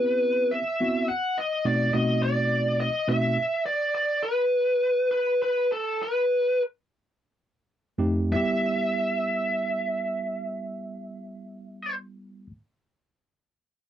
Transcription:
Already playing: tine electric piano B3 C4 E4 G4, lead electric guitar B4
0.51 lead electric guitar E5
0.80 tine electric piano B3 C4 E4 F#4
1.08 lead electric guitar F#5
1.38 lead electric guitar D#5
1.65 tine electric piano B2 A3 C4 D#4 F#4, lead electric guitar D5
1.94 tine electric piano B2 A3 C4 D#4 F#4, lead electric guitar D#5
2.23 lead electric guitar D5
2.80 lead electric guitar D#5
3.08 tine electric piano B2 A3 C4 D#4 F#4, lead electric guitar E5
3.66 lead electric guitar D5
3.95 lead electric guitar D5
4.23 lead electric guitar B4
5.11 lead electric guitar B4
5.43 lead electric guitar B4
5.72 lead electric guitar A4
6.03 lead electric guitar B4
7.98 tine electric piano F2 A3 C4 D#4 G4
8.32 tine electric piano G3 B3 E4, lead electric guitar E5
8.36 tine electric piano G4

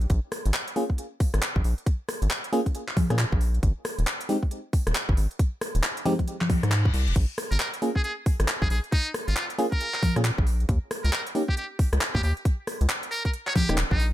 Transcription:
0.01 closed hi-hat
0.10 analog synth bass A#1, kick, closed hi-hat
0.32 cross-stick, open hi-hat
0.45 analog synth bass G#1, closed hi-hat
0.54 clap
0.68 closed hi-hat
0.76 fm electric piano A#3 C#4 F4 G#4, open hi-hat
0.90 kick
0.98 closed hi-hat
1.20 kick, open hi-hat
1.34 analog synth bass G#1, cross-stick, closed hi-hat
1.42 clap, closed hi-hat
1.56 analog synth bass A#1, kick
1.64 analog synth bass A#1, open hi-hat
1.78 closed hi-hat
1.86 kick, closed hi-hat
2.09 cross-stick, open hi-hat
2.22 analog synth bass G#1, closed hi-hat
2.31 clap
2.44 closed hi-hat
2.53 fm electric piano A#3 C#4 F4 G#4, open hi-hat
2.66 kick, closed hi-hat
2.75 closed hi-hat
2.88 clap
2.97 kick, open hi-hat, high conga
3.10 analog synth bass A#2, fm electric piano A#3 C#4 F4 G#4, cross-stick, closed hi-hat
3.19 clap, closed hi-hat
3.32 analog synth bass A#1, kick
3.41 open hi-hat
3.54 closed hi-hat
3.63 analog synth bass G#1, kick, closed hi-hat
3.85 cross-stick, open hi-hat
3.99 analog synth bass D#1, closed hi-hat
4.07 clap
4.21 closed hi-hat
4.29 fm electric piano G#3 C4 D#4 G4, open hi-hat
4.43 kick
4.51 closed hi-hat
4.73 kick, open hi-hat
4.87 analog synth bass D#1, cross-stick, closed hi-hat
4.95 clap, closed hi-hat
5.09 analog synth bass G#1, kick
5.17 analog synth bass G#1, open hi-hat
5.31 closed hi-hat
5.39 kick, closed hi-hat
5.61 cross-stick, open hi-hat
5.75 analog synth bass D#1, closed hi-hat
5.83 clap
5.97 closed hi-hat
6.05 fm electric piano G#3 C4 D#4 G4, open hi-hat, high conga
6.19 kick, closed hi-hat
6.28 closed hi-hat, reverse cymbal
6.41 clap, high conga
6.50 kick, open hi-hat, high conga
6.63 analog synth bass G#2, cross-stick, closed hi-hat
6.72 clap, closed hi-hat
6.85 kick
6.94 analog synth bass C2, open hi-hat
7.07 analog synth bass D#1, closed hi-hat
7.16 analog synth bass A#1, kick, closed hi-hat, crash
7.38 cross-stick, open hi-hat
7.51 analog synth bass G#1, muted trumpet A#4, closed hi-hat
7.60 muted trumpet A#4, clap
7.74 closed hi-hat
7.82 fm electric piano A#3 C#4 F4 G#4, open hi-hat
7.96 muted trumpet G#4, kick
8.04 muted trumpet G#4, closed hi-hat
8.26 kick, open hi-hat
8.40 analog synth bass G#1, cross-stick, closed hi-hat
8.48 clap, closed hi-hat
8.62 analog synth bass A#1, muted trumpet G#4, kick
8.70 analog synth bass A#1, muted trumpet G#4, open hi-hat
8.84 closed hi-hat
8.92 muted trumpet D#4, kick, closed hi-hat
9.14 cross-stick, open hi-hat
9.28 analog synth bass G#1, muted trumpet F4, closed hi-hat
9.36 muted trumpet F4, clap
9.50 closed hi-hat
9.59 fm electric piano A#3 C#4 F4 G#4, open hi-hat
9.72 muted trumpet A#4, kick, closed hi-hat
9.81 closed hi-hat
9.94 clap
10.03 kick, open hi-hat, high conga
10.16 analog synth bass A#2, fm electric piano A#3 C#4 F4 G#4, cross-stick, closed hi-hat
10.25 clap, closed hi-hat
10.38 analog synth bass A#1, kick
10.47 open hi-hat
10.60 closed hi-hat
10.69 analog synth bass D#2, kick, closed hi-hat
10.91 cross-stick, open hi-hat
11.04 analog synth bass C#2, muted trumpet A#4, closed hi-hat
11.13 muted trumpet A#4, clap
11.27 closed hi-hat
11.35 fm electric piano A#3 C#4 D#4 G4, open hi-hat
11.49 muted trumpet G4, kick
11.57 muted trumpet G4, closed hi-hat
11.79 kick, open hi-hat
11.93 analog synth bass C#2, cross-stick, closed hi-hat
12.01 clap, closed hi-hat
12.15 analog synth bass D#2, muted trumpet G4, kick
12.23 analog synth bass D#2, muted trumpet G4, open hi-hat
12.37 closed hi-hat
12.45 kick, closed hi-hat
12.67 cross-stick, open hi-hat
12.81 analog synth bass C#2, closed hi-hat
12.89 clap
13.03 closed hi-hat
13.11 muted trumpet A#4, open hi-hat
13.25 muted trumpet A#4, kick, closed hi-hat
13.33 closed hi-hat
13.47 muted trumpet C#5, clap
13.56 muted trumpet G4, kick, open hi-hat, high conga
13.69 analog synth bass D#1, fm electric piano A#3 C#4 D#4 G4, cross-stick, closed hi-hat
13.78 clap, closed hi-hat
13.91 analog synth bass A#1, muted trumpet D#4, kick
14.00 open hi-hat

